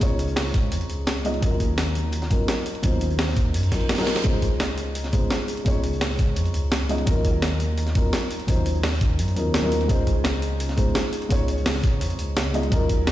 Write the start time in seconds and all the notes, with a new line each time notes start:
Already playing: F4 C5
0.00 C#2 G#3 C#4 D#4 F4 C#5, kick, closed hi-hat
0.19 closed hi-hat
0.28 closed hi-hat
0.36 snare, closed hi-hat, open hi-hat
0.46 snare
0.54 kick, snare, closed hi-hat
0.72 F2, closed hi-hat
0.81 closed hi-hat
0.90 C#2, closed hi-hat
1.07 snare, closed hi-hat
1.24 G#3 C#4 D#4 F4 D#5, closed hi-hat
1.34 closed hi-hat
1.41 D#2 F#3 C#4 D#4 F4 A#4, kick, closed hi-hat
1.60 kick, closed hi-hat
1.78 snare, closed hi-hat
1.95 closed hi-hat
2.12 closed hi-hat
2.22 snare, closed hi-hat
2.30 F#3 C#4 D#4 F4 A#4, kick, closed hi-hat
2.48 snare, closed hi-hat
2.66 closed hi-hat
2.75 closed hi-hat
2.82 D#2 F#3 C#4 D#4 F4 C5, kick, closed hi-hat
3.01 closed hi-hat
3.10 closed hi-hat
3.19 snare, closed hi-hat, open hi-hat
3.28 snare
3.37 kick, snare, closed hi-hat
3.54 F#2, closed hi-hat, reverse cymbal
3.63 closed hi-hat
3.71 A#1 F#3 C#4 D#4 F4 A#4, kick, snare, closed hi-hat
3.81 closed hi-hat
3.89 snare, closed hi-hat
3.94 F#3, snare, closed hi-hat
3.98 C#4 D#4 F4 A#4, snare, closed hi-hat
4.03 snare, closed hi-hat
4.07 snare, closed hi-hat
4.16 snare, closed hi-hat
4.23 C#2 G#3 C#4 D#4 F4 C5, kick, closed hi-hat
4.42 kick, closed hi-hat
4.60 snare, closed hi-hat
4.78 closed hi-hat
4.95 closed hi-hat
5.04 snare, closed hi-hat
5.13 G#3 C#4 D#4 F4 C5, kick, closed hi-hat
5.30 snare, closed hi-hat
5.48 closed hi-hat
5.57 closed hi-hat
5.65 C#2 G#3 C#4 D#4 F4 C#5, kick, closed hi-hat
5.84 closed hi-hat
5.93 closed hi-hat
6.01 snare, closed hi-hat, open hi-hat
6.10 snare
6.19 kick, snare, closed hi-hat
6.36 F2, closed hi-hat
6.46 closed hi-hat
6.54 C#2, closed hi-hat
6.72 snare, closed hi-hat
6.89 G#3 C#4 D#4 F4 D#5, closed hi-hat
6.98 closed hi-hat
7.06 D#2 F#3 C#4 D#4 F4 A#4, kick, closed hi-hat
7.25 kick, closed hi-hat
7.42 snare, closed hi-hat
7.60 closed hi-hat
7.78 closed hi-hat
7.87 snare, closed hi-hat
7.95 F#3 C#4 D#4 F4 A#4, kick, closed hi-hat
8.13 snare, closed hi-hat
8.31 closed hi-hat
8.40 closed hi-hat
8.47 D#2 F#3 C#4 D#4 F4 C5, kick, closed hi-hat
8.66 closed hi-hat
8.75 closed hi-hat
8.83 snare, closed hi-hat, open hi-hat
8.93 snare
9.01 kick, snare, closed hi-hat
9.19 F#2, closed hi-hat
9.28 closed hi-hat
9.36 D#2 F#3 C#4 D#4 F4 A#4, closed hi-hat
9.54 snare, closed hi-hat
9.62 F#3 C#4 D#4 F4 A#4
9.72 closed hi-hat
9.81 closed hi-hat
9.88 C#2 G#3 C#4 D#4 F4 C5, kick, closed hi-hat
10.07 kick, closed hi-hat
10.24 snare, closed hi-hat
10.42 closed hi-hat
10.60 closed hi-hat
10.69 snare, closed hi-hat
10.77 G#3 C#4 D#4 F4 C5, kick, closed hi-hat
10.95 snare, closed hi-hat
11.13 closed hi-hat
11.22 closed hi-hat
11.29 C#2 G#3 C#4 D#4 F4 C#5, kick, closed hi-hat
11.48 closed hi-hat
11.58 closed hi-hat
11.66 snare, closed hi-hat, open hi-hat
11.75 snare
11.83 kick, snare, closed hi-hat
12.01 F2, closed hi-hat
12.10 closed hi-hat
12.19 C#2, closed hi-hat
12.36 snare, closed hi-hat
12.53 G#3 C#4 D#4 F4 D#5, closed hi-hat
12.63 closed hi-hat
12.70 D#2 F#3 C#4 D#4 F4 A#4, kick, closed hi-hat
12.89 kick, closed hi-hat
13.07 snare, closed hi-hat